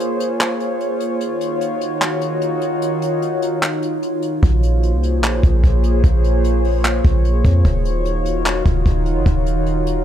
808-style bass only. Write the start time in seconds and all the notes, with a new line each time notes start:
4.43 A#1
4.93 C2
5.18 A#1
5.43 A#1
5.64 A#1
6.04 A#1
7.04 A#1
7.45 F2
7.65 D#1
8.66 D#1
8.86 D#1
9.16 F#1
9.26 D#1